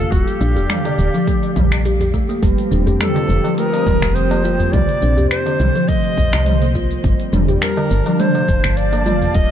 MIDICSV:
0, 0, Header, 1, 8, 480
1, 0, Start_track
1, 0, Key_signature, -2, "minor"
1, 0, Tempo, 576923
1, 98, Time_signature, 4, 2, 24, 8
1, 7912, End_track
2, 0, Start_track
2, 0, Title_t, "Native American-style wooden flute"
2, 0, Program_c, 0, 77
2, 0, Note_on_c, 0, 69, 96
2, 90, Note_on_c, 0, 66, 96
2, 103, Note_off_c, 0, 69, 0
2, 232, Note_off_c, 0, 66, 0
2, 232, Note_on_c, 0, 67, 96
2, 1534, Note_off_c, 0, 67, 0
2, 2502, Note_on_c, 0, 69, 89
2, 2947, Note_off_c, 0, 69, 0
2, 2974, Note_on_c, 0, 70, 100
2, 3449, Note_on_c, 0, 72, 94
2, 3461, Note_off_c, 0, 70, 0
2, 3928, Note_on_c, 0, 74, 113
2, 3941, Note_off_c, 0, 72, 0
2, 4405, Note_off_c, 0, 74, 0
2, 4410, Note_on_c, 0, 72, 103
2, 4893, Note_on_c, 0, 75, 110
2, 4905, Note_off_c, 0, 72, 0
2, 5616, Note_off_c, 0, 75, 0
2, 6337, Note_on_c, 0, 70, 90
2, 6820, Note_on_c, 0, 72, 100
2, 6833, Note_off_c, 0, 70, 0
2, 7298, Note_on_c, 0, 74, 98
2, 7310, Note_off_c, 0, 72, 0
2, 7779, Note_on_c, 0, 75, 114
2, 7792, Note_off_c, 0, 74, 0
2, 7912, Note_off_c, 0, 75, 0
2, 7912, End_track
3, 0, Start_track
3, 0, Title_t, "Analog synth pad"
3, 0, Program_c, 1, 89
3, 0, Note_on_c, 1, 55, 84
3, 0, Note_on_c, 1, 62, 94
3, 0, Note_on_c, 1, 69, 96
3, 0, Note_on_c, 1, 77, 72
3, 102, Note_off_c, 1, 55, 0
3, 102, Note_off_c, 1, 62, 0
3, 338, Note_on_c, 1, 74, 73
3, 802, Note_on_c, 1, 67, 82
3, 873, Note_off_c, 1, 69, 0
3, 2019, Note_on_c, 1, 53, 91
3, 2021, Note_off_c, 1, 74, 0
3, 2089, Note_on_c, 1, 60, 88
3, 2675, Note_off_c, 1, 77, 0
3, 2894, Note_on_c, 1, 87, 65
3, 3939, Note_off_c, 1, 53, 0
3, 3941, Note_off_c, 1, 87, 0
3, 3944, Note_on_c, 1, 48, 82
3, 4711, Note_off_c, 1, 67, 0
3, 4811, Note_on_c, 1, 72, 76
3, 5861, Note_off_c, 1, 48, 0
3, 5865, Note_on_c, 1, 55, 75
3, 6223, Note_on_c, 1, 62, 85
3, 6448, Note_on_c, 1, 81, 84
3, 6630, Note_off_c, 1, 60, 0
3, 6631, Note_off_c, 1, 72, 0
3, 6733, Note_on_c, 1, 77, 69
3, 7781, Note_off_c, 1, 62, 0
3, 7782, Note_off_c, 1, 55, 0
3, 7912, Note_off_c, 1, 77, 0
3, 7912, Note_off_c, 1, 81, 0
3, 7912, End_track
4, 0, Start_track
4, 0, Title_t, "Singing bowl"
4, 0, Program_c, 2, 14
4, 0, Note_on_c, 2, 55, 74
4, 0, Note_on_c, 2, 67, 73
4, 2008, Note_off_c, 2, 67, 0
4, 2010, Note_off_c, 2, 55, 0
4, 2018, Note_on_c, 2, 67, 72
4, 2020, Note_on_c, 2, 55, 71
4, 7912, Note_off_c, 2, 55, 0
4, 7912, Note_off_c, 2, 67, 0
4, 7912, End_track
5, 0, Start_track
5, 0, Title_t, "Kalimba"
5, 0, Program_c, 3, 108
5, 101, Note_on_c, 3, 55, 75
5, 222, Note_off_c, 3, 55, 0
5, 341, Note_on_c, 3, 62, 78
5, 456, Note_off_c, 3, 62, 0
5, 466, Note_on_c, 3, 67, 75
5, 530, Note_off_c, 3, 67, 0
5, 710, Note_on_c, 3, 50, 99
5, 772, Note_off_c, 3, 50, 0
5, 952, Note_on_c, 3, 53, 74
5, 1013, Note_off_c, 3, 53, 0
5, 1061, Note_on_c, 3, 57, 77
5, 1183, Note_off_c, 3, 57, 0
5, 1303, Note_on_c, 3, 55, 95
5, 1417, Note_off_c, 3, 55, 0
5, 1542, Note_on_c, 3, 67, 81
5, 1659, Note_off_c, 3, 67, 0
5, 1669, Note_on_c, 3, 67, 75
5, 1768, Note_off_c, 3, 67, 0
5, 1778, Note_on_c, 3, 57, 101
5, 1901, Note_off_c, 3, 57, 0
5, 1906, Note_on_c, 3, 58, 90
5, 2006, Note_off_c, 3, 58, 0
5, 2017, Note_on_c, 3, 55, 78
5, 2140, Note_off_c, 3, 55, 0
5, 2257, Note_on_c, 3, 62, 74
5, 2374, Note_off_c, 3, 62, 0
5, 2386, Note_on_c, 3, 67, 75
5, 2450, Note_off_c, 3, 67, 0
5, 2627, Note_on_c, 3, 50, 101
5, 2691, Note_off_c, 3, 50, 0
5, 2871, Note_on_c, 3, 53, 82
5, 2932, Note_off_c, 3, 53, 0
5, 2981, Note_on_c, 3, 57, 79
5, 3102, Note_off_c, 3, 57, 0
5, 3585, Note_on_c, 3, 58, 76
5, 3691, Note_off_c, 3, 58, 0
5, 3696, Note_on_c, 3, 65, 79
5, 3820, Note_off_c, 3, 65, 0
5, 3935, Note_on_c, 3, 55, 78
5, 4060, Note_off_c, 3, 55, 0
5, 4177, Note_on_c, 3, 62, 74
5, 4294, Note_off_c, 3, 62, 0
5, 4304, Note_on_c, 3, 67, 78
5, 4369, Note_off_c, 3, 67, 0
5, 4545, Note_on_c, 3, 50, 99
5, 4609, Note_off_c, 3, 50, 0
5, 4786, Note_on_c, 3, 53, 81
5, 4850, Note_off_c, 3, 53, 0
5, 4896, Note_on_c, 3, 57, 82
5, 5020, Note_off_c, 3, 57, 0
5, 5508, Note_on_c, 3, 58, 74
5, 5613, Note_off_c, 3, 58, 0
5, 5617, Note_on_c, 3, 65, 77
5, 5740, Note_off_c, 3, 65, 0
5, 5856, Note_on_c, 3, 55, 78
5, 5980, Note_off_c, 3, 55, 0
5, 6097, Note_on_c, 3, 62, 75
5, 6214, Note_off_c, 3, 62, 0
5, 6227, Note_on_c, 3, 67, 78
5, 6291, Note_off_c, 3, 67, 0
5, 6468, Note_on_c, 3, 50, 108
5, 6531, Note_off_c, 3, 50, 0
5, 6709, Note_on_c, 3, 53, 76
5, 6771, Note_off_c, 3, 53, 0
5, 6817, Note_on_c, 3, 57, 77
5, 6941, Note_off_c, 3, 57, 0
5, 7427, Note_on_c, 3, 58, 81
5, 7532, Note_off_c, 3, 58, 0
5, 7536, Note_on_c, 3, 65, 78
5, 7660, Note_off_c, 3, 65, 0
5, 7778, Note_on_c, 3, 55, 76
5, 7901, Note_off_c, 3, 55, 0
5, 7912, End_track
6, 0, Start_track
6, 0, Title_t, "FM bass"
6, 0, Program_c, 4, 39
6, 100, Note_on_c, 4, 27, 98
6, 186, Note_off_c, 4, 27, 0
6, 341, Note_on_c, 4, 34, 96
6, 470, Note_on_c, 4, 27, 86
6, 482, Note_off_c, 4, 34, 0
6, 543, Note_off_c, 4, 27, 0
6, 821, Note_on_c, 4, 27, 95
6, 906, Note_off_c, 4, 27, 0
6, 1301, Note_on_c, 4, 34, 97
6, 1840, Note_off_c, 4, 34, 0
6, 2020, Note_on_c, 4, 29, 94
6, 2105, Note_off_c, 4, 29, 0
6, 2260, Note_on_c, 4, 27, 100
6, 2388, Note_on_c, 4, 29, 86
6, 2400, Note_off_c, 4, 27, 0
6, 2462, Note_off_c, 4, 29, 0
6, 2738, Note_on_c, 4, 29, 92
6, 2824, Note_off_c, 4, 29, 0
6, 3217, Note_on_c, 4, 27, 93
6, 3304, Note_off_c, 4, 27, 0
6, 3347, Note_on_c, 4, 29, 82
6, 3879, Note_off_c, 4, 29, 0
6, 3939, Note_on_c, 4, 36, 97
6, 4025, Note_off_c, 4, 36, 0
6, 4182, Note_on_c, 4, 34, 92
6, 4308, Note_on_c, 4, 36, 95
6, 4321, Note_off_c, 4, 34, 0
6, 4382, Note_off_c, 4, 36, 0
6, 4659, Note_on_c, 4, 36, 93
6, 4745, Note_off_c, 4, 36, 0
6, 5139, Note_on_c, 4, 34, 84
6, 5225, Note_off_c, 4, 34, 0
6, 5267, Note_on_c, 4, 36, 83
6, 5799, Note_off_c, 4, 36, 0
6, 5859, Note_on_c, 4, 31, 104
6, 5945, Note_off_c, 4, 31, 0
6, 6098, Note_on_c, 4, 29, 99
6, 6225, Note_on_c, 4, 31, 87
6, 6238, Note_off_c, 4, 29, 0
6, 6300, Note_off_c, 4, 31, 0
6, 6581, Note_on_c, 4, 31, 92
6, 6666, Note_off_c, 4, 31, 0
6, 7061, Note_on_c, 4, 29, 88
6, 7146, Note_off_c, 4, 29, 0
6, 7189, Note_on_c, 4, 31, 85
6, 7720, Note_off_c, 4, 31, 0
6, 7780, Note_on_c, 4, 27, 106
6, 7866, Note_off_c, 4, 27, 0
6, 7912, End_track
7, 0, Start_track
7, 0, Title_t, "Tabla"
7, 94, Note_on_c, 9, 63, 36
7, 177, Note_off_c, 9, 63, 0
7, 338, Note_on_c, 9, 63, 42
7, 421, Note_off_c, 9, 63, 0
7, 471, Note_on_c, 9, 64, 82
7, 554, Note_off_c, 9, 64, 0
7, 705, Note_on_c, 9, 60, 75
7, 788, Note_off_c, 9, 60, 0
7, 946, Note_on_c, 9, 63, 41
7, 1030, Note_off_c, 9, 63, 0
7, 1183, Note_on_c, 9, 63, 55
7, 1266, Note_off_c, 9, 63, 0
7, 1297, Note_on_c, 9, 64, 87
7, 1380, Note_off_c, 9, 64, 0
7, 1431, Note_on_c, 9, 63, 36
7, 1432, Note_on_c, 9, 60, 61
7, 1514, Note_off_c, 9, 63, 0
7, 1515, Note_off_c, 9, 60, 0
7, 1662, Note_on_c, 9, 64, 81
7, 1745, Note_off_c, 9, 64, 0
7, 2018, Note_on_c, 9, 63, 38
7, 2101, Note_off_c, 9, 63, 0
7, 2387, Note_on_c, 9, 64, 102
7, 2470, Note_off_c, 9, 64, 0
7, 2620, Note_on_c, 9, 60, 75
7, 2703, Note_off_c, 9, 60, 0
7, 2864, Note_on_c, 9, 60, 61
7, 2947, Note_off_c, 9, 60, 0
7, 3105, Note_on_c, 9, 60, 75
7, 3188, Note_off_c, 9, 60, 0
7, 3586, Note_on_c, 9, 60, 77
7, 3669, Note_off_c, 9, 60, 0
7, 3821, Note_on_c, 9, 64, 87
7, 3904, Note_off_c, 9, 64, 0
7, 4301, Note_on_c, 9, 64, 89
7, 4384, Note_off_c, 9, 64, 0
7, 4542, Note_on_c, 9, 60, 72
7, 4625, Note_off_c, 9, 60, 0
7, 4788, Note_on_c, 9, 63, 36
7, 4871, Note_off_c, 9, 63, 0
7, 5026, Note_on_c, 9, 63, 53
7, 5109, Note_off_c, 9, 63, 0
7, 5138, Note_on_c, 9, 64, 91
7, 5221, Note_off_c, 9, 64, 0
7, 5265, Note_on_c, 9, 60, 59
7, 5348, Note_off_c, 9, 60, 0
7, 5861, Note_on_c, 9, 63, 34
7, 5944, Note_off_c, 9, 63, 0
7, 6226, Note_on_c, 9, 64, 88
7, 6309, Note_off_c, 9, 64, 0
7, 6467, Note_on_c, 9, 60, 73
7, 6550, Note_off_c, 9, 60, 0
7, 6708, Note_on_c, 9, 60, 63
7, 6791, Note_off_c, 9, 60, 0
7, 6945, Note_on_c, 9, 60, 74
7, 7028, Note_off_c, 9, 60, 0
7, 7427, Note_on_c, 9, 60, 85
7, 7511, Note_off_c, 9, 60, 0
7, 7668, Note_on_c, 9, 64, 95
7, 7751, Note_off_c, 9, 64, 0
7, 7912, End_track
8, 0, Start_track
8, 0, Title_t, "Drums"
8, 100, Note_on_c, 9, 36, 116
8, 101, Note_on_c, 9, 46, 77
8, 103, Note_on_c, 9, 82, 43
8, 184, Note_off_c, 9, 36, 0
8, 184, Note_off_c, 9, 46, 0
8, 186, Note_off_c, 9, 82, 0
8, 230, Note_on_c, 9, 46, 48
8, 232, Note_on_c, 9, 82, 31
8, 313, Note_off_c, 9, 46, 0
8, 315, Note_off_c, 9, 82, 0
8, 343, Note_on_c, 9, 82, 73
8, 426, Note_off_c, 9, 82, 0
8, 471, Note_on_c, 9, 46, 30
8, 473, Note_on_c, 9, 82, 31
8, 554, Note_off_c, 9, 46, 0
8, 556, Note_off_c, 9, 82, 0
8, 580, Note_on_c, 9, 26, 78
8, 580, Note_on_c, 9, 45, 79
8, 580, Note_on_c, 9, 46, 70
8, 582, Note_on_c, 9, 82, 42
8, 663, Note_off_c, 9, 26, 0
8, 663, Note_off_c, 9, 45, 0
8, 663, Note_off_c, 9, 46, 0
8, 665, Note_off_c, 9, 82, 0
8, 710, Note_on_c, 9, 46, 48
8, 793, Note_off_c, 9, 46, 0
8, 824, Note_on_c, 9, 82, 76
8, 907, Note_off_c, 9, 82, 0
8, 952, Note_on_c, 9, 46, 33
8, 954, Note_on_c, 9, 82, 33
8, 1035, Note_off_c, 9, 46, 0
8, 1037, Note_off_c, 9, 82, 0
8, 1060, Note_on_c, 9, 36, 105
8, 1063, Note_on_c, 9, 46, 69
8, 1065, Note_on_c, 9, 82, 42
8, 1143, Note_off_c, 9, 36, 0
8, 1146, Note_off_c, 9, 46, 0
8, 1148, Note_off_c, 9, 82, 0
8, 1191, Note_on_c, 9, 46, 46
8, 1193, Note_on_c, 9, 82, 29
8, 1274, Note_off_c, 9, 46, 0
8, 1276, Note_off_c, 9, 82, 0
8, 1300, Note_on_c, 9, 36, 99
8, 1301, Note_on_c, 9, 45, 80
8, 1303, Note_on_c, 9, 82, 78
8, 1383, Note_off_c, 9, 36, 0
8, 1384, Note_off_c, 9, 45, 0
8, 1386, Note_off_c, 9, 82, 0
8, 1430, Note_on_c, 9, 26, 80
8, 1430, Note_on_c, 9, 46, 34
8, 1432, Note_on_c, 9, 82, 30
8, 1513, Note_off_c, 9, 26, 0
8, 1513, Note_off_c, 9, 46, 0
8, 1515, Note_off_c, 9, 82, 0
8, 1542, Note_on_c, 9, 46, 71
8, 1544, Note_on_c, 9, 82, 41
8, 1625, Note_off_c, 9, 46, 0
8, 1627, Note_off_c, 9, 82, 0
8, 1671, Note_on_c, 9, 46, 51
8, 1755, Note_off_c, 9, 46, 0
8, 1780, Note_on_c, 9, 36, 55
8, 1783, Note_on_c, 9, 82, 69
8, 1863, Note_off_c, 9, 36, 0
8, 1867, Note_off_c, 9, 82, 0
8, 1913, Note_on_c, 9, 46, 31
8, 1915, Note_on_c, 9, 82, 33
8, 1996, Note_off_c, 9, 46, 0
8, 1998, Note_off_c, 9, 82, 0
8, 2019, Note_on_c, 9, 36, 119
8, 2023, Note_on_c, 9, 46, 76
8, 2026, Note_on_c, 9, 82, 48
8, 2102, Note_off_c, 9, 36, 0
8, 2107, Note_off_c, 9, 46, 0
8, 2109, Note_off_c, 9, 82, 0
8, 2150, Note_on_c, 9, 46, 49
8, 2233, Note_off_c, 9, 46, 0
8, 2263, Note_on_c, 9, 82, 78
8, 2346, Note_off_c, 9, 82, 0
8, 2390, Note_on_c, 9, 46, 32
8, 2392, Note_on_c, 9, 82, 33
8, 2473, Note_off_c, 9, 46, 0
8, 2475, Note_off_c, 9, 82, 0
8, 2501, Note_on_c, 9, 26, 82
8, 2501, Note_on_c, 9, 45, 80
8, 2501, Note_on_c, 9, 46, 75
8, 2503, Note_on_c, 9, 82, 42
8, 2585, Note_off_c, 9, 26, 0
8, 2585, Note_off_c, 9, 45, 0
8, 2585, Note_off_c, 9, 46, 0
8, 2587, Note_off_c, 9, 82, 0
8, 2629, Note_on_c, 9, 46, 49
8, 2713, Note_off_c, 9, 46, 0
8, 2741, Note_on_c, 9, 82, 82
8, 2824, Note_off_c, 9, 82, 0
8, 2869, Note_on_c, 9, 46, 34
8, 2871, Note_on_c, 9, 82, 32
8, 2952, Note_off_c, 9, 46, 0
8, 2954, Note_off_c, 9, 82, 0
8, 2978, Note_on_c, 9, 46, 68
8, 2980, Note_on_c, 9, 82, 45
8, 3062, Note_off_c, 9, 46, 0
8, 3064, Note_off_c, 9, 82, 0
8, 3109, Note_on_c, 9, 46, 46
8, 3192, Note_off_c, 9, 46, 0
8, 3217, Note_on_c, 9, 45, 81
8, 3218, Note_on_c, 9, 36, 107
8, 3219, Note_on_c, 9, 82, 83
8, 3301, Note_off_c, 9, 45, 0
8, 3302, Note_off_c, 9, 36, 0
8, 3303, Note_off_c, 9, 82, 0
8, 3347, Note_on_c, 9, 36, 62
8, 3348, Note_on_c, 9, 26, 80
8, 3350, Note_on_c, 9, 82, 34
8, 3431, Note_off_c, 9, 26, 0
8, 3431, Note_off_c, 9, 36, 0
8, 3433, Note_off_c, 9, 82, 0
8, 3459, Note_on_c, 9, 46, 70
8, 3462, Note_on_c, 9, 82, 41
8, 3543, Note_off_c, 9, 46, 0
8, 3545, Note_off_c, 9, 82, 0
8, 3587, Note_on_c, 9, 46, 47
8, 3670, Note_off_c, 9, 46, 0
8, 3700, Note_on_c, 9, 82, 77
8, 3783, Note_off_c, 9, 82, 0
8, 3828, Note_on_c, 9, 46, 33
8, 3830, Note_on_c, 9, 82, 33
8, 3911, Note_off_c, 9, 46, 0
8, 3913, Note_off_c, 9, 82, 0
8, 3939, Note_on_c, 9, 36, 127
8, 3939, Note_on_c, 9, 45, 76
8, 3939, Note_on_c, 9, 46, 72
8, 3941, Note_on_c, 9, 82, 45
8, 4022, Note_off_c, 9, 36, 0
8, 4022, Note_off_c, 9, 45, 0
8, 4022, Note_off_c, 9, 46, 0
8, 4024, Note_off_c, 9, 82, 0
8, 4068, Note_on_c, 9, 46, 46
8, 4151, Note_off_c, 9, 46, 0
8, 4180, Note_on_c, 9, 82, 80
8, 4263, Note_off_c, 9, 82, 0
8, 4308, Note_on_c, 9, 46, 31
8, 4310, Note_on_c, 9, 82, 33
8, 4391, Note_off_c, 9, 46, 0
8, 4393, Note_off_c, 9, 82, 0
8, 4418, Note_on_c, 9, 26, 80
8, 4418, Note_on_c, 9, 46, 71
8, 4420, Note_on_c, 9, 82, 48
8, 4501, Note_off_c, 9, 26, 0
8, 4501, Note_off_c, 9, 46, 0
8, 4503, Note_off_c, 9, 82, 0
8, 4548, Note_on_c, 9, 46, 49
8, 4631, Note_off_c, 9, 46, 0
8, 4657, Note_on_c, 9, 45, 73
8, 4659, Note_on_c, 9, 82, 82
8, 4741, Note_off_c, 9, 45, 0
8, 4743, Note_off_c, 9, 82, 0
8, 4788, Note_on_c, 9, 46, 31
8, 4790, Note_on_c, 9, 82, 35
8, 4872, Note_off_c, 9, 46, 0
8, 4874, Note_off_c, 9, 82, 0
8, 4896, Note_on_c, 9, 46, 68
8, 4898, Note_on_c, 9, 36, 112
8, 4898, Note_on_c, 9, 82, 49
8, 4979, Note_off_c, 9, 46, 0
8, 4982, Note_off_c, 9, 36, 0
8, 4982, Note_off_c, 9, 82, 0
8, 5025, Note_on_c, 9, 46, 45
8, 5108, Note_off_c, 9, 46, 0
8, 5138, Note_on_c, 9, 36, 108
8, 5140, Note_on_c, 9, 82, 88
8, 5222, Note_off_c, 9, 36, 0
8, 5223, Note_off_c, 9, 82, 0
8, 5267, Note_on_c, 9, 26, 81
8, 5269, Note_on_c, 9, 82, 34
8, 5350, Note_off_c, 9, 26, 0
8, 5353, Note_off_c, 9, 82, 0
8, 5377, Note_on_c, 9, 45, 72
8, 5377, Note_on_c, 9, 46, 66
8, 5379, Note_on_c, 9, 82, 47
8, 5460, Note_off_c, 9, 45, 0
8, 5460, Note_off_c, 9, 46, 0
8, 5462, Note_off_c, 9, 82, 0
8, 5506, Note_on_c, 9, 46, 47
8, 5589, Note_off_c, 9, 46, 0
8, 5619, Note_on_c, 9, 36, 60
8, 5619, Note_on_c, 9, 82, 75
8, 5702, Note_off_c, 9, 36, 0
8, 5702, Note_off_c, 9, 82, 0
8, 5747, Note_on_c, 9, 46, 30
8, 5749, Note_on_c, 9, 82, 35
8, 5830, Note_off_c, 9, 46, 0
8, 5832, Note_off_c, 9, 82, 0
8, 5858, Note_on_c, 9, 46, 71
8, 5859, Note_on_c, 9, 36, 127
8, 5860, Note_on_c, 9, 82, 47
8, 5941, Note_off_c, 9, 46, 0
8, 5942, Note_off_c, 9, 36, 0
8, 5943, Note_off_c, 9, 82, 0
8, 5988, Note_on_c, 9, 46, 43
8, 6071, Note_off_c, 9, 46, 0
8, 6097, Note_on_c, 9, 45, 77
8, 6100, Note_on_c, 9, 82, 82
8, 6181, Note_off_c, 9, 45, 0
8, 6183, Note_off_c, 9, 82, 0
8, 6228, Note_on_c, 9, 46, 29
8, 6230, Note_on_c, 9, 82, 32
8, 6311, Note_off_c, 9, 46, 0
8, 6313, Note_off_c, 9, 82, 0
8, 6338, Note_on_c, 9, 26, 78
8, 6338, Note_on_c, 9, 46, 68
8, 6340, Note_on_c, 9, 82, 50
8, 6421, Note_off_c, 9, 26, 0
8, 6421, Note_off_c, 9, 46, 0
8, 6424, Note_off_c, 9, 82, 0
8, 6467, Note_on_c, 9, 46, 43
8, 6550, Note_off_c, 9, 46, 0
8, 6579, Note_on_c, 9, 82, 87
8, 6662, Note_off_c, 9, 82, 0
8, 6706, Note_on_c, 9, 46, 31
8, 6708, Note_on_c, 9, 82, 35
8, 6789, Note_off_c, 9, 46, 0
8, 6791, Note_off_c, 9, 82, 0
8, 6820, Note_on_c, 9, 45, 72
8, 6820, Note_on_c, 9, 46, 62
8, 6822, Note_on_c, 9, 82, 49
8, 6903, Note_off_c, 9, 45, 0
8, 6903, Note_off_c, 9, 46, 0
8, 6905, Note_off_c, 9, 82, 0
8, 6948, Note_on_c, 9, 46, 43
8, 7031, Note_off_c, 9, 46, 0
8, 7060, Note_on_c, 9, 36, 109
8, 7060, Note_on_c, 9, 82, 89
8, 7143, Note_off_c, 9, 36, 0
8, 7144, Note_off_c, 9, 82, 0
8, 7188, Note_on_c, 9, 26, 83
8, 7190, Note_on_c, 9, 36, 69
8, 7190, Note_on_c, 9, 82, 36
8, 7271, Note_off_c, 9, 26, 0
8, 7273, Note_off_c, 9, 36, 0
8, 7273, Note_off_c, 9, 82, 0
8, 7297, Note_on_c, 9, 46, 61
8, 7300, Note_on_c, 9, 82, 47
8, 7381, Note_off_c, 9, 46, 0
8, 7383, Note_off_c, 9, 82, 0
8, 7427, Note_on_c, 9, 46, 46
8, 7510, Note_off_c, 9, 46, 0
8, 7538, Note_on_c, 9, 45, 71
8, 7540, Note_on_c, 9, 82, 82
8, 7621, Note_off_c, 9, 45, 0
8, 7623, Note_off_c, 9, 82, 0
8, 7667, Note_on_c, 9, 46, 29
8, 7670, Note_on_c, 9, 82, 36
8, 7751, Note_off_c, 9, 46, 0
8, 7753, Note_off_c, 9, 82, 0
8, 7776, Note_on_c, 9, 46, 69
8, 7778, Note_on_c, 9, 82, 47
8, 7781, Note_on_c, 9, 36, 126
8, 7859, Note_off_c, 9, 46, 0
8, 7861, Note_off_c, 9, 82, 0
8, 7864, Note_off_c, 9, 36, 0
8, 7912, End_track
0, 0, End_of_file